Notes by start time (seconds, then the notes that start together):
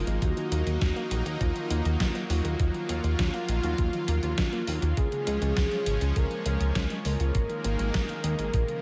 Already playing: G#3 A#3 D#4 F4
0.07 G#1 G#3, closed hi-hat
0.22 D#2 F#3 D#4 F#4, kick, closed hi-hat
0.37 D#3, closed hi-hat
0.52 D#2 A#3, closed hi-hat
0.66 D#2 D#3, closed hi-hat
0.81 D#2, kick, snare, closed hi-hat
0.96 A#3, closed hi-hat
1.11 A#1 D#3, closed hi-hat
1.26 D#2 F#4, closed hi-hat
1.41 D#2 F4, kick, closed hi-hat
1.56 D#3, closed hi-hat
1.70 D#2 A#3, closed hi-hat
1.85 D#2 D#3, closed hi-hat
2.00 D#2, kick, snare, closed hi-hat
2.15 A#3, closed hi-hat
2.30 D#2 D#3 F4, open hi-hat
2.45 D#2 F#4, closed hi-hat
2.60 D#2 F4, kick, closed hi-hat
2.74 D#3, closed hi-hat
2.89 D#2 A#3, closed hi-hat
3.04 D#2 D#3, closed hi-hat
3.19 D#2, kick, snare, closed hi-hat
3.34 A#3, snare, closed hi-hat
3.49 A#1 D#3, closed hi-hat
3.63 D#2 F#4, closed hi-hat
3.78 D#2, kick, closed hi-hat
3.93 D#3, closed hi-hat
4.08 D#2 A#3, closed hi-hat
4.23 D#2 D#3, closed hi-hat
4.38 D#2, kick, snare, closed hi-hat
4.53 A#3, closed hi-hat
4.67 D#2 D#3, open hi-hat
4.82 D#2 F#4, closed hi-hat
4.97 C#2 F3 G#3 C#4 G#4, kick, closed hi-hat
5.12 C#3, closed hi-hat
5.27 C#2 G#3, closed hi-hat
5.42 C#2 C#3, closed hi-hat
5.57 C#2, kick, snare, closed hi-hat
5.71 G#3, closed hi-hat
5.86 G#1 C#3, closed hi-hat
6.01 C#2 F4, closed hi-hat
6.16 C#2 A#4, kick, closed hi-hat
6.31 C#3, closed hi-hat
6.46 C#2 G#3, closed hi-hat
6.61 C#2 C#3, closed hi-hat
6.75 C#2, kick, snare, closed hi-hat
6.90 G#3, closed hi-hat
7.05 C#2 C#3 A#4, open hi-hat
7.20 C#2 F4, closed hi-hat
7.35 G#1 D#3 G#3 A#3, kick, closed hi-hat
7.50 D#3, closed hi-hat
7.64 G#1 A#3, closed hi-hat
7.79 G#1 D#3, closed hi-hat
7.94 G#1, kick, snare, closed hi-hat
8.09 A#3, snare, closed hi-hat
8.24 D#2 D#3, closed hi-hat
8.39 G#1 G#4, closed hi-hat
8.54 A#1 C#3 F3 A#3, kick, closed hi-hat
8.68 C#3, closed hi-hat